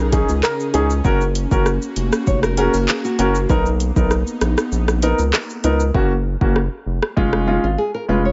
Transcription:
Already playing: B1 C#3 C#4 D#4 G#4
0.12 C#4 D#4 G#4, kick, closed hi-hat, shaker
0.29 C#2, shaker
0.43 A#4, cross-stick, clap, shaker
0.60 shaker
0.74 C#2 C#4 D#4 G#4, closed hi-hat, shaker
0.90 shaker
1.04 F#1 A#3 C#4 F#4 A#4, kick, shaker
1.21 shaker
1.35 closed hi-hat, shaker
1.51 F#1 C#4 F#4 A#4, kick, shaker
1.66 cross-stick, shaker
1.82 shaker
1.96 F1, closed hi-hat, shaker
2.12 cross-stick, shaker
2.27 F1 C#5, kick, shaker
2.43 A#4, cross-stick, shaker
2.57 C#4 F#4 G#4 A#4, closed hi-hat, shaker
2.74 F#1 A#4, shaker
2.88 G#4, clap, shaker
3.05 F#4, shaker
3.19 F#1 C#4 F#4 A#4, closed hi-hat, shaker
3.35 shaker
3.49 B1 B3 D#4 A#4, kick, shaker
3.66 shaker
3.80 closed hi-hat, shaker
3.96 B1 B3 D#4 A#4, kick, shaker
4.11 cross-stick, shaker
4.27 shaker
4.41 A#1, cross-stick, closed hi-hat, shaker
4.58 cross-stick, shaker
4.72 A#1, shaker
4.88 cross-stick, shaker
5.02 B3 D#4 A#4, closed hi-hat, shaker
5.19 C#2, shaker
5.33 cross-stick, clap, shaker
5.50 shaker
5.64 C#2 B3 D#4 A#4, closed hi-hat, shaker
5.80 shaker
5.94 F#1 A#3 C#4 F#4, kick
6.41 F#1 A#3 C#4 F#4, kick
6.56 cross-stick
6.86 F1
7.03 cross-stick
7.17 F1 G#3 C#4 F4, kick
7.33 cross-stick
7.47 G#3 C#4 D#4 F4
7.64 G#1 F4
7.78 G#4
7.94 A#4
8.08 F1 G#3 C#4 F4 B4
8.25 C#5

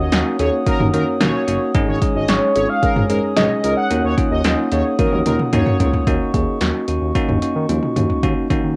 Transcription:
Already playing: C#5 F#5 D#6
0.00 D#5
0.12 D#2 A#3 C#4 D#4 F#4, snare, closed hi-hat
0.39 D#2 A#3 C#4 D#4 F#4 C#5, closed hi-hat, cowbell
0.67 A#3 C#4 D#4 F#4 A#4, kick, closed hi-hat
0.80 D#2, mid tom
0.93 D#2 A#3 C#4 D#4 F#4 A#4, closed hi-hat
1.20 D#2 A#3 C#4 D#4 F#4 C#5, snare, closed hi-hat, mid tom
1.48 F#1 A#3 C#4 D#4 F#4, closed hi-hat
1.74 G#1 G#3 C#4 D#4 G#4 C#5 G#5 D#6, kick, closed hi-hat
1.88 G#1 C#5
2.02 G#3 C#4 D#4 G#4, kick, closed hi-hat
2.15 G#1 D#5
2.28 G#1 G#3 C#4 D#4 G#4 C#5, snare, closed hi-hat
2.55 G#1 G#3 C#4 D#4 F4 C#5, closed hi-hat, cowbell
2.69 F5
2.83 G#3 C#4 D#4 G#4 A#4, kick, closed hi-hat
2.96 G#1, mid tom
3.09 G#1 G#3 C#4 D#4 G#4 A#4, closed hi-hat
3.37 G#1 G#3 C#4 D#4 G#4 C#5 D#5, snare, closed hi-hat, mid tom
3.64 C#2 G#3 C#4 D#4 G#4 A#4, closed hi-hat
3.77 F#5
3.91 D#2 A#3 C#4 D#4 F#4 C#5 F#5, closed hi-hat
4.04 D#2 C#5
4.18 A#3 C#4 D#4 F4, kick, closed hi-hat
4.31 D#2 D#5
4.44 D#2 A#3 C#4 D#4 F4, snare, closed hi-hat
4.72 D#2 A#3 C#4 D#4 G#4 C#5, closed hi-hat
4.99 A#3 C#4 D#4 F#4 A#4, kick, closed hi-hat, high tom
5.12 D#2, high tom
5.26 D#2 A#3 C#4 D#4 F4 A#4, closed hi-hat, mid tom
5.39 mid tom
5.53 D#2 A#3 C#4 D#4 F#4 C#5, closed hi-hat, mid tom
5.66 mid tom
5.80 C#2 A#3 C#4 D#4 F4, closed hi-hat, floor tom
5.94 floor tom
6.07 D#2 A#3 C#4 D#4 F#4 D#5 C#6, kick, closed hi-hat
6.34 D#2 A#3 C#4 D#4 G#4, kick, closed hi-hat
6.61 D#2 A#3 C#4 D#4 F#4, snare, closed hi-hat
6.88 D#2 A#3 C#4 D#4 F#4, closed hi-hat
7.02 D#2
7.15 A#3 C#4 D#4 F#4, kick, closed hi-hat
7.29 D#2, mid tom
7.42 A#3 C#4 D#4 F#4, closed hi-hat
7.56 D#3
7.69 D#2 A#3 C#4 D#4 F4, closed hi-hat, high tom
7.83 mid tom
7.96 D#2 A#3 C#4 D#4 F#4, closed hi-hat, mid tom
8.10 floor tom
8.23 D#2 A#3 C#4 D#4 F#4, kick, closed hi-hat
8.50 D#2 A#3 C#4 D#4 F#4, kick, closed hi-hat
8.64 D#2

